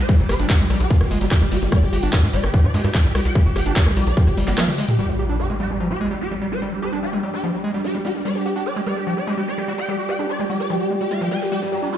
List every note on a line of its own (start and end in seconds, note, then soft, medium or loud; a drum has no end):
0.00 4.97 G3 medium
0.00 5.01 F4 medium
0.09 0.17 G3 medium
0.09 0.16 G3 medium
0.09 kick loud
0.09 closed hi-hat medium
0.09 shaker soft
0.19 0.25 G1 medium
0.19 0.26 G3 medium
0.19 closed hi-hat soft
0.29 0.35 G1 loud
0.29 0.34 G4 medium
0.29 0.36 C5 medium
0.29 cross-stick medium
0.29 open hi-hat loud
0.29 shaker medium
0.39 0.45 G1 medium
0.39 0.46 G3 medium
0.39 0.47 D4 medium
0.39 closed hi-hat medium
0.39 shaker medium
0.49 0.57 G4 medium
0.49 kick loud
0.49 clap loud
0.49 closed hi-hat medium
0.49 shaker soft
0.60 0.66 B1 medium
0.60 0.67 G3 medium
0.60 0.65 G#3 medium
0.60 closed hi-hat soft
0.70 0.76 B1 loud
0.70 0.78 G3 medium
0.70 0.77 G3 medium
0.70 cross-stick soft
0.70 open hi-hat medium
0.70 shaker medium
0.80 0.86 B1 medium
0.80 0.87 G4 loud
0.80 closed hi-hat medium
0.80 shaker soft
0.90 0.98 F3 medium
0.90 0.97 G3 medium
0.90 kick loud
0.90 closed hi-hat medium
0.90 shaker soft
1.01 1.07 G1 medium
1.01 1.08 G3 medium
1.01 cross-stick medium
1.01 closed hi-hat soft
1.11 1.17 G1 loud
1.11 1.19 G#3 loud
1.11 open hi-hat loud
1.11 shaker medium
1.21 1.27 G1 medium
1.21 1.28 G3 medium
1.21 1.26 G3 medium
1.21 closed hi-hat medium
1.21 shaker medium
1.31 1.38 G4 medium
1.31 kick loud
1.31 clap loud
1.31 closed hi-hat medium
1.31 shaker soft
1.41 1.47 G1 medium
1.41 1.48 G3 medium
1.41 1.45 G3 medium
1.41 cross-stick soft
1.41 closed hi-hat soft
1.51 1.58 G1 loud
1.51 1.57 G3 medium
1.51 1.59 G4 medium
1.51 open hi-hat medium
1.51 shaker medium
1.62 1.68 G1 medium
1.62 1.69 G3 medium
1.62 closed hi-hat medium
1.62 shaker medium
1.72 1.80 G3 medium
1.72 1.79 D5 loud
1.72 kick loud
1.72 cross-stick medium
1.72 closed hi-hat medium
1.72 shaker soft
1.82 1.88 G1 medium
1.82 1.89 G4 medium
1.82 closed hi-hat soft
1.93 1.98 G1 loud
1.93 1.98 G4 medium
1.93 1.99 G4 medium
1.93 open hi-hat loud
1.93 shaker medium
2.03 2.09 G1 medium
2.03 2.10 D4 medium
2.03 2.10 G4 medium
2.03 closed hi-hat medium
2.03 shaker soft
2.12 2.20 D5 medium
2.12 kick loud
2.12 cross-stick soft
2.12 clap loud
2.12 closed hi-hat medium
2.12 shaker soft
2.23 2.29 G2 medium
2.23 2.28 G#3 medium
2.23 2.30 G4 medium
2.23 closed hi-hat soft
2.33 2.39 G1 loud
2.33 2.41 G3 medium
2.33 2.40 D5 medium
2.33 open hi-hat medium
2.33 shaker medium
2.43 2.49 G1 medium
2.43 2.50 G4 medium
2.43 cross-stick medium
2.43 closed hi-hat medium
2.43 shaker medium
2.53 2.61 F3 medium
2.53 2.61 G4 medium
2.53 kick loud
2.53 closed hi-hat medium
2.53 shaker soft
2.64 2.70 G2 medium
2.64 2.71 D5 medium
2.64 closed hi-hat soft
2.74 2.80 G2 loud
2.74 2.82 G#3 loud
2.74 2.81 G4 medium
2.74 open hi-hat loud
2.74 shaker medium
2.84 2.90 G2 medium
2.84 2.89 G3 medium
2.84 2.91 G4 medium
2.84 cross-stick soft
2.84 closed hi-hat medium
2.84 shaker medium
2.95 3.01 D5 loud
2.95 kick loud
2.95 clap loud
2.95 closed hi-hat medium
3.05 3.11 C2 medium
3.05 3.08 G3 medium
3.05 3.12 G4 medium
3.05 closed hi-hat soft
3.15 3.21 C2 loud
3.15 3.20 G3 medium
3.15 3.22 G4 medium
3.15 cross-stick medium
3.15 open hi-hat medium
3.15 shaker medium
3.25 3.31 C2 medium
3.25 3.32 G5 medium
3.25 closed hi-hat medium
3.25 shaker medium
3.35 3.43 G3 medium
3.35 3.42 G4 medium
3.35 kick loud
3.35 closed hi-hat medium
3.35 shaker soft
3.46 3.51 G1 medium
3.46 3.52 G4 medium
3.46 closed hi-hat soft
3.55 3.62 G1 loud
3.55 3.61 G4 medium
3.55 3.63 G5 medium
3.55 cross-stick soft
3.55 open hi-hat loud
3.55 shaker loud
3.66 3.72 G1 medium
3.66 3.74 D4 medium
3.66 3.73 G4 medium
3.66 closed hi-hat medium
3.66 shaker soft
3.76 3.83 D5 loud
3.76 kick loud
3.76 clap loud
3.76 closed hi-hat medium
3.76 shaker soft
3.86 3.92 B1 medium
3.86 3.91 G#3 medium
3.86 3.93 G4 medium
3.86 cross-stick medium
3.86 closed hi-hat soft
3.96 4.03 B1 loud
3.96 4.04 G3 medium
3.96 4.03 G4 medium
3.96 open hi-hat medium
3.96 shaker medium
4.07 4.13 B1 medium
4.07 4.14 D5 medium
4.07 closed hi-hat medium
4.07 shaker medium
4.17 4.25 F3 medium
4.17 4.24 G4 medium
4.17 kick loud
4.17 closed hi-hat medium
4.17 shaker soft
4.27 4.33 G1 medium
4.27 4.34 G4 medium
4.27 cross-stick soft
4.27 closed hi-hat soft
4.37 4.43 G1 loud
4.37 4.45 G3 medium
4.37 open hi-hat loud
4.37 high tom medium
4.37 shaker medium
4.48 4.54 G1 medium
4.48 4.53 G3 loud
4.48 4.54 G4 medium
4.48 snare medium
4.48 closed hi-hat medium
4.48 shaker medium
4.58 4.65 F3 loud
4.58 4.65 F5 medium
4.58 cross-stick medium
4.58 snare medium
4.58 clap loud
4.58 closed hi-hat medium
4.58 shaker soft
4.68 4.71 G3 loud
4.68 4.75 G4 medium
4.68 closed hi-hat soft
4.68 mid tom medium
4.78 4.86 G#3 loud
4.78 4.85 G5 medium
4.78 open hi-hat medium
4.78 shaker medium
4.88 4.95 G4 medium
4.88 closed hi-hat medium
4.88 mid tom medium
4.88 shaker medium
4.99 11.98 G3 medium
4.99 5.06 G3 medium
4.99 8.27 D4 medium
4.99 11.98 G4 medium
4.99 5.06 G4 loud
4.99 impact medium
5.09 5.16 G3 medium
5.19 5.26 G3 medium
5.19 5.24 G4 medium
5.29 5.36 G3 medium
5.29 5.37 D4 medium
5.39 5.46 G4 medium
5.50 5.57 G3 medium
5.50 5.55 G#3 medium
5.58 5.68 G3 medium
5.58 5.67 G4 medium
5.58 11.98 G5 medium
5.64 11.98 D5 medium
5.70 5.77 G3 medium
5.80 5.88 F3 medium
5.80 5.87 G3 medium
5.91 5.97 G4 medium
6.01 6.08 G3 medium
6.01 6.08 G#3 loud
6.11 6.18 G3 medium
6.11 6.16 G3 medium
6.21 6.28 G4 medium
6.31 6.34 G3 medium
6.31 6.38 G3 medium
6.42 6.47 G3 medium
6.42 6.48 G3 medium
6.52 6.59 C5 medium
6.62 6.70 G3 medium
6.62 6.69 G3 medium
6.72 6.79 G3 medium
6.82 6.87 G4 medium
6.82 6.89 C5 medium
6.92 6.99 G3 medium
6.92 7.00 D4 medium
7.03 7.10 G4 medium
7.13 7.20 G3 medium
7.13 7.18 G#3 medium
7.23 7.30 G3 medium
7.23 7.31 G3 medium
7.33 7.40 G4 medium
7.44 7.51 F3 medium
7.44 7.50 G3 medium
7.54 7.61 G3 medium
7.64 7.72 G#3 loud
7.74 7.81 G3 medium
7.74 7.79 G3 medium
7.84 7.91 G4 medium
7.95 7.98 G3 medium
7.95 8.01 G3 medium
8.05 8.10 G3 medium
8.05 8.12 G4 medium
8.15 8.22 G3 medium
8.25 8.33 G3 medium
8.25 11.54 F4 medium
8.25 8.32 D5 loud
8.35 8.42 G4 medium
8.46 8.52 G4 medium
8.46 8.51 G4 medium
8.56 8.63 D4 medium
8.56 8.63 G4 medium
8.66 8.73 D5 medium
8.76 8.81 G#3 medium
8.76 8.83 G4 medium
8.86 8.94 G3 medium
8.86 8.93 D5 medium
8.97 9.03 G4 medium
9.07 9.14 F3 medium
9.07 9.14 G4 medium
9.17 9.24 D5 medium
9.27 9.35 G#3 loud
9.27 9.34 G4 medium
9.37 9.43 G3 medium
9.37 9.44 G4 medium
9.48 9.54 D5 medium
9.58 9.61 G3 medium
9.58 9.65 G4 medium
9.68 9.73 G3 medium
9.68 9.75 G4 medium
9.78 9.85 G5 medium
9.88 9.96 G3 medium
9.88 9.95 G4 medium
9.99 10.05 G4 medium
10.09 10.14 G4 medium
10.09 10.16 G5 medium
10.19 10.27 D4 medium
10.19 10.26 G4 medium
10.29 10.36 D5 loud
10.39 10.45 G#3 medium
10.39 10.46 G4 medium
10.50 10.57 G3 medium
10.50 10.57 G4 medium
10.60 10.67 D5 medium
10.70 10.78 F3 medium
10.70 10.77 G4 medium
10.80 10.87 G4 medium
10.90 10.96 G#3 medium
11.01 11.06 G3 medium
11.01 11.08 G4 medium
11.11 11.14 G#3 medium
11.11 11.18 F5 medium
11.21 11.29 F3 medium
11.21 11.28 G4 medium
11.31 11.36 G3 medium
11.31 11.38 G#5 medium
11.41 11.48 G4 medium
11.52 11.59 G3 medium
11.52 11.98 D4 medium
11.52 11.59 G4 loud
11.62 11.69 G3 medium
11.72 11.79 G3 medium
11.72 11.77 G4 medium
11.82 11.89 G3 medium
11.82 11.90 D4 medium
11.93 11.98 G4 medium